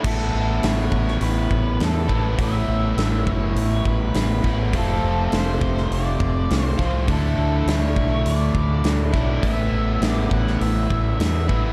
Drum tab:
CC |x---------------|----------------|----------------|----------------|
HH |----o---o---o---|o---o---o---o---|o---o---o---o---|o---o---o---o---|
SD |----o--o----o---|----o-------o-o-|----o--o----o-o-|----o-------o-o-|
BD |o-----o---o---o-|o-----o---o---o-|o-----o---o---o-|o-----o---o---o-|

CC |----------------|
HH |o---o---o---o---|
SD |----o--o----o---|
BD |o-----o---o---o-|